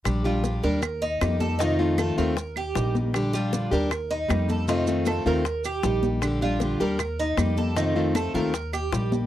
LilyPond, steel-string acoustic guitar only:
\new Staff \with { instrumentName = "Steel-string acoustic guitar" } { \time 4/4 \key bes \major \tempo 4 = 156 <d g d' g'>8 <g d' g'>8 <d g d' g'>8 <g d' g'>8 r4 <g bes ees' g'>4 | <c ees a c' f'>8 <ees a c' f'>8 <ees a c' f'>8 <ees a c' f'>8 r4 <g bes ees' g'>4 | <d g d' g'>8 <g d' g'>8 <d g d' g'>8 <g d' g'>8 r4 <g bes ees' g'>4 | <c ees a c' f'>8 <ees a c' f'>8 <ees a c' f'>8 <ees a c' f'>8 r4 <g bes ees' g'>4 |
<d g d' g'>8 <g d' g'>8 <d g d' g'>8 <g d' g'>8 r4 <g bes ees' g'>4 | <c ees a c' f'>8 <ees a c' f'>8 <ees c' f'>8 <ees a c' f'>8 r4 <g bes ees' g'>4 | }